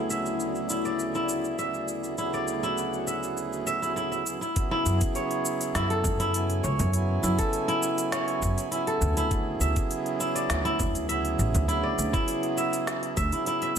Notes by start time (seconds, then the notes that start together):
Already playing: D2 C#3 F#3 A3 B3 E4 G#4 A4 D5 E5
0.10 E5, shaker
0.26 shaker
0.40 shaker
0.55 shaker
0.70 E4, shaker
0.85 D5, shaker
0.99 shaker
1.15 E4, shaker
1.29 shaker
1.44 shaker
1.58 D2 C#3 F#3 B3 E4 G#4 E5, shaker
1.74 shaker
1.88 shaker
2.04 shaker
2.17 D2 C#3 F#3 B3 E4 G#4 F#5, shaker
2.34 D5, shaker
2.48 shaker
2.63 E4, shaker
2.78 shaker
2.93 shaker
3.07 E5, shaker
3.23 shaker
3.37 shaker
3.53 shaker
3.67 E5, shaker
3.82 D2 C#3 F#3 B3 E4 G#4, shaker
3.96 E4, shaker
4.12 E5, shaker
4.26 D2 C#3 F#3 B3 E4 G#4, shaker
4.41 E4, shaker
4.54 C#3 F#3 B3 E4 G#4, kick, open hi-hat, shaker
4.71 E4
4.86 F#2, shaker
5.01 kick, open hi-hat, shaker
5.15 C#5, open hi-hat, shaker
5.31 open hi-hat
5.45 shaker
5.61 open hi-hat, shaker
5.75 F#2 E4, snare, open hi-hat, shaker
5.90 A4, open hi-hat
6.04 kick, frame drum, shaker
6.20 E4, open hi-hat, shaker
6.34 C#3 F#3 B3 E4 G#5, open hi-hat, shaker
6.50 open hi-hat
6.63 C#2 C#5, shaker
6.79 F#2, open hi-hat, frame drum, shaker
6.92 C#3 F#3 B3 E4 G#5, open hi-hat, shaker
7.23 F#2 E4, shaker
7.38 A4, kick, open hi-hat, shaker
7.53 open hi-hat, shaker
7.68 E4, open hi-hat
7.83 shaker
7.98 open hi-hat, shaker
8.12 C#5, snare, open hi-hat, shaker
8.28 open hi-hat
8.42 F#2, kick, shaker
8.58 open hi-hat, shaker
8.71 C#3 F#3 B3 E4 G#5, open hi-hat, shaker
8.87 A4, open hi-hat
9.01 D2, frame drum, shaker
9.17 E4, open hi-hat, shaker
9.30 C#3 F#3 B3 E4 G#4, kick, open hi-hat, shaker
9.61 D2 E5, shaker
9.76 kick, open hi-hat, shaker
9.91 open hi-hat, shaker
10.06 open hi-hat
10.20 E4, shaker
10.35 D5, open hi-hat, shaker
10.50 D2, snare, open hi-hat, shaker
10.65 E4, open hi-hat
10.79 kick, frame drum, shaker
10.95 open hi-hat, shaker
11.09 C#3 F#3 B3 E4 G#4 E5, open hi-hat, shaker
11.25 open hi-hat
11.39 A1, shaker
11.54 D2, open hi-hat, frame drum, shaker
11.67 C#3 F#3 B3 E4, open hi-hat, shaker
11.71 G#4
11.83 D5
11.98 D2, shaker
12.13 E4, kick, open hi-hat, shaker
12.28 open hi-hat, shaker
12.43 open hi-hat
12.57 E5, shaker
12.73 open hi-hat, shaker
12.87 snare, open hi-hat, shaker
13.03 open hi-hat
13.17 D2 E5, kick, shaker
13.32 C#3 F#3 B3 E4 G#4, open hi-hat, shaker
13.46 E4, open hi-hat, shaker
13.62 E5, open hi-hat